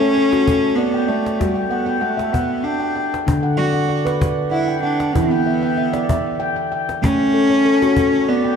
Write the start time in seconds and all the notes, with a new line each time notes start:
Already playing: C#4 A4
0.01 C#5
0.16 A4, cajon slap
0.32 F#4, cajon slap
0.47 A4, cajon bass
0.63 cajon slap
0.76 B3 D5
0.94 G5
1.08 A3 D5
1.26 cajon slap
1.39 G3 F#4, cajon bass, cajon slap
1.55 G5
1.70 B3 F#5
1.86 G5
2.01 A3 F#5, cajon slap
2.17 E5, cajon slap
2.32 B3 F#5, cajon bass
2.64 D4 G5, cajon slap
2.80 G5
2.95 G5
3.14 cajon slap
3.27 D3 D4, cajon bass
3.43 F#5
3.57 F#4 D5
3.74 F#5
3.89 D5, cajon slap
4.05 B4, cajon slap
4.20 D5, cajon bass
4.38 cajon slap
4.51 E4 F#5
4.68 G5
4.82 D4 F#5
5.00 cajon slap
5.14 E3 B3 E4, cajon bass
5.31 G5
5.46 E5
5.63 G5
5.78 E5, cajon slap
5.93 D5, cajon slap
6.09 E5, cajon bass
6.26 cajon slap
6.40 G5
6.56 G5
6.72 G5
6.89 cajon slap
7.02 A3 C#4, cajon bass
7.18 C#5
7.34 A4
7.50 C#5
7.65 A4, cajon slap
7.82 F#4, cajon slap
7.96 A4, cajon bass
8.14 cajon slap
8.28 B3 D5
8.44 G5